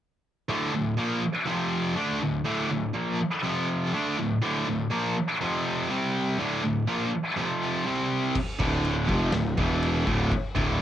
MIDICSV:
0, 0, Header, 1, 4, 480
1, 0, Start_track
1, 0, Key_signature, -1, "minor"
1, 0, Tempo, 490998
1, 486, Time_signature, 4, 2, 24, 8
1, 10575, End_track
2, 0, Start_track
2, 0, Title_t, "Distorted electric guitar"
2, 0, Program_c, 0, 30
2, 481, Note_on_c, 0, 38, 86
2, 483, Note_on_c, 0, 45, 89
2, 484, Note_on_c, 0, 50, 97
2, 710, Note_off_c, 0, 38, 0
2, 715, Note_off_c, 0, 45, 0
2, 717, Note_off_c, 0, 50, 0
2, 722, Note_on_c, 0, 38, 51
2, 726, Note_on_c, 0, 45, 58
2, 916, Note_off_c, 0, 38, 0
2, 918, Note_off_c, 0, 45, 0
2, 964, Note_on_c, 0, 46, 68
2, 967, Note_on_c, 0, 53, 87
2, 969, Note_on_c, 0, 58, 86
2, 1197, Note_off_c, 0, 46, 0
2, 1199, Note_off_c, 0, 53, 0
2, 1200, Note_off_c, 0, 58, 0
2, 1439, Note_on_c, 0, 41, 87
2, 1444, Note_on_c, 0, 48, 83
2, 1451, Note_on_c, 0, 53, 95
2, 1910, Note_off_c, 0, 48, 0
2, 1914, Note_off_c, 0, 53, 0
2, 1914, Note_on_c, 0, 50, 77
2, 1915, Note_off_c, 0, 41, 0
2, 1918, Note_on_c, 0, 57, 86
2, 1920, Note_on_c, 0, 62, 84
2, 2152, Note_off_c, 0, 50, 0
2, 2154, Note_off_c, 0, 57, 0
2, 2155, Note_off_c, 0, 62, 0
2, 2164, Note_on_c, 0, 38, 59
2, 2169, Note_on_c, 0, 45, 66
2, 2356, Note_off_c, 0, 38, 0
2, 2359, Note_off_c, 0, 45, 0
2, 2396, Note_on_c, 0, 38, 82
2, 2400, Note_on_c, 0, 45, 95
2, 2401, Note_on_c, 0, 50, 92
2, 2633, Note_off_c, 0, 38, 0
2, 2635, Note_off_c, 0, 45, 0
2, 2636, Note_off_c, 0, 50, 0
2, 2644, Note_on_c, 0, 38, 50
2, 2646, Note_on_c, 0, 45, 62
2, 2836, Note_off_c, 0, 38, 0
2, 2837, Note_off_c, 0, 45, 0
2, 2887, Note_on_c, 0, 46, 71
2, 2893, Note_on_c, 0, 53, 88
2, 2893, Note_on_c, 0, 58, 92
2, 3119, Note_off_c, 0, 46, 0
2, 3121, Note_off_c, 0, 53, 0
2, 3122, Note_off_c, 0, 58, 0
2, 3367, Note_on_c, 0, 41, 92
2, 3373, Note_on_c, 0, 48, 93
2, 3378, Note_on_c, 0, 53, 101
2, 3839, Note_off_c, 0, 41, 0
2, 3842, Note_off_c, 0, 48, 0
2, 3844, Note_off_c, 0, 53, 0
2, 3845, Note_on_c, 0, 50, 81
2, 3850, Note_on_c, 0, 57, 86
2, 3850, Note_on_c, 0, 62, 94
2, 4078, Note_off_c, 0, 50, 0
2, 4080, Note_off_c, 0, 62, 0
2, 4081, Note_off_c, 0, 57, 0
2, 4090, Note_on_c, 0, 38, 62
2, 4093, Note_on_c, 0, 45, 67
2, 4280, Note_off_c, 0, 38, 0
2, 4281, Note_off_c, 0, 45, 0
2, 4320, Note_on_c, 0, 38, 80
2, 4323, Note_on_c, 0, 45, 100
2, 4330, Note_on_c, 0, 50, 109
2, 4552, Note_off_c, 0, 38, 0
2, 4557, Note_off_c, 0, 45, 0
2, 4561, Note_off_c, 0, 50, 0
2, 4564, Note_on_c, 0, 38, 55
2, 4572, Note_on_c, 0, 45, 65
2, 4757, Note_off_c, 0, 38, 0
2, 4761, Note_off_c, 0, 45, 0
2, 4800, Note_on_c, 0, 46, 89
2, 4808, Note_on_c, 0, 53, 86
2, 4810, Note_on_c, 0, 58, 87
2, 5036, Note_off_c, 0, 46, 0
2, 5040, Note_off_c, 0, 53, 0
2, 5041, Note_off_c, 0, 58, 0
2, 5291, Note_on_c, 0, 41, 89
2, 5292, Note_on_c, 0, 48, 94
2, 5298, Note_on_c, 0, 53, 96
2, 5762, Note_off_c, 0, 41, 0
2, 5763, Note_off_c, 0, 48, 0
2, 5766, Note_off_c, 0, 53, 0
2, 5773, Note_on_c, 0, 48, 85
2, 5777, Note_on_c, 0, 55, 85
2, 5780, Note_on_c, 0, 60, 98
2, 6243, Note_off_c, 0, 48, 0
2, 6245, Note_off_c, 0, 55, 0
2, 6247, Note_off_c, 0, 60, 0
2, 6253, Note_on_c, 0, 38, 88
2, 6259, Note_on_c, 0, 45, 94
2, 6263, Note_on_c, 0, 50, 102
2, 6472, Note_off_c, 0, 38, 0
2, 6478, Note_off_c, 0, 45, 0
2, 6484, Note_on_c, 0, 38, 57
2, 6489, Note_off_c, 0, 50, 0
2, 6490, Note_on_c, 0, 45, 58
2, 6678, Note_off_c, 0, 38, 0
2, 6681, Note_off_c, 0, 45, 0
2, 6721, Note_on_c, 0, 46, 85
2, 6727, Note_on_c, 0, 53, 84
2, 6729, Note_on_c, 0, 58, 90
2, 6957, Note_off_c, 0, 46, 0
2, 6960, Note_off_c, 0, 53, 0
2, 6961, Note_off_c, 0, 58, 0
2, 7210, Note_on_c, 0, 41, 81
2, 7219, Note_on_c, 0, 48, 90
2, 7221, Note_on_c, 0, 53, 105
2, 7678, Note_off_c, 0, 48, 0
2, 7682, Note_off_c, 0, 41, 0
2, 7688, Note_off_c, 0, 53, 0
2, 7690, Note_on_c, 0, 48, 74
2, 7690, Note_on_c, 0, 55, 94
2, 7696, Note_on_c, 0, 60, 88
2, 8161, Note_off_c, 0, 48, 0
2, 8162, Note_off_c, 0, 55, 0
2, 8165, Note_off_c, 0, 60, 0
2, 8411, Note_on_c, 0, 38, 90
2, 8413, Note_on_c, 0, 45, 87
2, 8420, Note_on_c, 0, 50, 96
2, 8882, Note_off_c, 0, 38, 0
2, 8883, Note_off_c, 0, 45, 0
2, 8886, Note_off_c, 0, 50, 0
2, 8887, Note_on_c, 0, 41, 89
2, 8891, Note_on_c, 0, 48, 110
2, 8894, Note_on_c, 0, 53, 92
2, 9120, Note_off_c, 0, 41, 0
2, 9122, Note_off_c, 0, 48, 0
2, 9123, Note_off_c, 0, 53, 0
2, 9128, Note_on_c, 0, 38, 70
2, 9131, Note_on_c, 0, 45, 71
2, 9319, Note_off_c, 0, 38, 0
2, 9320, Note_off_c, 0, 45, 0
2, 9367, Note_on_c, 0, 40, 100
2, 9371, Note_on_c, 0, 47, 93
2, 9376, Note_on_c, 0, 52, 102
2, 9838, Note_off_c, 0, 40, 0
2, 9839, Note_off_c, 0, 47, 0
2, 9843, Note_off_c, 0, 52, 0
2, 9843, Note_on_c, 0, 45, 98
2, 9844, Note_on_c, 0, 38, 91
2, 9850, Note_on_c, 0, 50, 106
2, 10076, Note_off_c, 0, 45, 0
2, 10077, Note_off_c, 0, 38, 0
2, 10080, Note_off_c, 0, 50, 0
2, 10315, Note_on_c, 0, 38, 86
2, 10323, Note_on_c, 0, 45, 87
2, 10325, Note_on_c, 0, 50, 83
2, 10575, Note_off_c, 0, 38, 0
2, 10575, Note_off_c, 0, 45, 0
2, 10575, Note_off_c, 0, 50, 0
2, 10575, End_track
3, 0, Start_track
3, 0, Title_t, "Picked electric bass"
3, 0, Program_c, 1, 34
3, 8409, Note_on_c, 1, 26, 92
3, 8854, Note_off_c, 1, 26, 0
3, 8883, Note_on_c, 1, 29, 92
3, 9108, Note_off_c, 1, 29, 0
3, 9120, Note_on_c, 1, 26, 83
3, 9346, Note_off_c, 1, 26, 0
3, 9364, Note_on_c, 1, 28, 97
3, 9811, Note_off_c, 1, 28, 0
3, 9844, Note_on_c, 1, 26, 97
3, 10067, Note_off_c, 1, 26, 0
3, 10320, Note_on_c, 1, 26, 81
3, 10575, Note_off_c, 1, 26, 0
3, 10575, End_track
4, 0, Start_track
4, 0, Title_t, "Drums"
4, 8167, Note_on_c, 9, 49, 113
4, 8167, Note_on_c, 9, 57, 55
4, 8169, Note_on_c, 9, 36, 100
4, 8264, Note_off_c, 9, 49, 0
4, 8264, Note_off_c, 9, 57, 0
4, 8267, Note_off_c, 9, 36, 0
4, 8408, Note_on_c, 9, 36, 102
4, 8506, Note_off_c, 9, 36, 0
4, 8650, Note_on_c, 9, 57, 62
4, 8747, Note_off_c, 9, 57, 0
4, 8887, Note_on_c, 9, 36, 100
4, 8984, Note_off_c, 9, 36, 0
4, 9117, Note_on_c, 9, 38, 115
4, 9117, Note_on_c, 9, 57, 58
4, 9215, Note_off_c, 9, 38, 0
4, 9215, Note_off_c, 9, 57, 0
4, 9365, Note_on_c, 9, 36, 107
4, 9463, Note_off_c, 9, 36, 0
4, 9606, Note_on_c, 9, 57, 66
4, 9704, Note_off_c, 9, 57, 0
4, 9845, Note_on_c, 9, 36, 107
4, 9942, Note_off_c, 9, 36, 0
4, 10083, Note_on_c, 9, 36, 108
4, 10084, Note_on_c, 9, 57, 62
4, 10180, Note_off_c, 9, 36, 0
4, 10182, Note_off_c, 9, 57, 0
4, 10322, Note_on_c, 9, 36, 110
4, 10420, Note_off_c, 9, 36, 0
4, 10575, End_track
0, 0, End_of_file